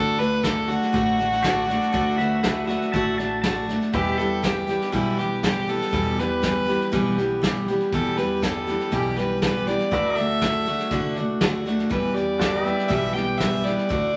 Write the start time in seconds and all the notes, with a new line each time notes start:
Already playing: D2 D3 A3 D4 F#4 A4
0.18 A3 D4 F#4 B4, snare
0.42 D3 A3 D4 F#4 A4, kick, snare, hi-hat pedal
0.68 A3 D4 F#4, snare
0.82 snare
0.93 A1 D3 A3 D4 F#4, kick, snare
1.17 A3 D4 F#4, snare
1.32 snare
1.43 D3 A3 D4 F#4 A4 D5, kick, snare, hi-hat pedal
1.67 A3 D4 F#4 A4 D5, snare
1.81 snare
1.92 D2 D3 A3 D4 F#4 A4 D5, kick, snare
2.17 A3 D4 F#4 B4 E5, snare
2.43 D3 A3 D4 F#4 B4 E5, kick, snare, hi-hat pedal
2.67 A3 D4 F#4 B4 E5, snare
2.82 snare
2.92 A1 D3 A3 D4 F#4 E5 A5, kick, snare
3.17 A3 D4 F#4 E5 A5, snare
3.42 D3 A3 A5, kick, snare, hi-hat pedal
3.46 D4 F#4
3.68 A3 D4 F#4, snare
3.81 snare
3.93 E2 B2 E3 G3 B3 G4 B4 E5, kick, snare
4.17 E3 G3 B3 G4 A4, snare
4.42 E3 G3 B3 G4, kick, snare, hi-hat pedal
4.67 E3 G3 B3 G4, snare
4.81 snare
4.92 B1 E2 B2 E3 G3 B3 E4 G4, kick, snare
5.17 E3 G3 B3 G4, snare
5.43 E3 G3 B3 G4, kick, snare, hi-hat pedal
5.67 E3 G3 B3 G4 A4, snare
5.81 snare
5.92 E2 B2 E3 G3 B3 G4, kick, snare
6.16 E3 G3 B3 G4 B4, snare
6.42 E3 G3 B3 G4, kick, snare, hi-hat pedal
6.66 E3 G3 B3 G4, snare
6.81 snare
6.92 B1 E2 B2 E3 G3 B3 G4, kick, snare
7.17 E3 G3 B3 G4, snare
7.42 E3 G3 B3 G4, kick, snare, hi-hat pedal
7.68 E3 G3 B3 G4, snare
7.80 snare
7.92 E2 B2 E3 G3 B3 G4 A4, kick, snare
8.17 E3 G3 B3 G4 B4, snare
8.42 E3 G3 B3 G4 A4, kick, snare, hi-hat pedal
8.67 E3 G3 B3 G4, snare
8.80 snare
8.92 B1 E2 B2 E3 G3 B3 G4, kick, snare
9.16 E3 G3 B3 G4 B4, snare
9.42 E3 G3 B3 G4 B4, kick, snare, hi-hat pedal
9.66 E3 G3 B3 G4 D5, snare
9.79 snare
9.91 D2 D3 A3 D4 F#4 B4 E5, kick, snare
10.16 A3 D4 F#4 A4 D5 E5, snare
10.41 D3 A3 D4 F#4, kick, snare, hi-hat pedal
10.66 A3 D4 F#4, snare
10.79 snare
10.91 C2 D3 A3 D4 F#4, kick, snare
11.16 A3 D4 F#4, snare
11.41 D2 D3 A3 D4 F#4, kick, snare, hi-hat pedal
11.66 A3 D4 F#4, snare
11.79 snare
11.89 E2 B2 E3 G3 B3 G4 B4, kick, snare
12.14 E3 G3 B3 G4 D5, snare
12.39 E3 G3 B3 F#4 G4 A4 D5, kick, snare, hi-hat pedal
12.59 G4
12.64 E3 G3 B3 G4 B4 E5, snare
12.78 snare
12.88 B1 E2 B2 E3 G3 B3 G4 E5, kick, snare
13.13 E3 G3 B3 G4 G5, snare
13.38 E3 G3 B3 E5, kick, snare, hi-hat pedal
13.42 G4
13.64 E3 G3 B3 G4 D5, snare
13.78 snare
13.89 D2 D3 A3 D4 F#4, kick, snare
14.13 F#4